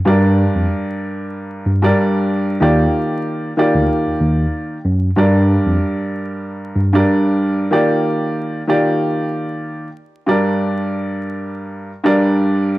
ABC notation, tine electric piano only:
X:1
M:4/4
L:1/16
Q:"Swing 16ths" 1/4=94
K:Gm
V:1 name="Tine electric piano" clef=bass
G,,3 F,, z6 G,,2 z4 | E,,2 z4 z D,, z E,, E,,2 z2 ^F,,2 | G,,3 F,, z6 G,,2 z4 | z16 |
z16 |]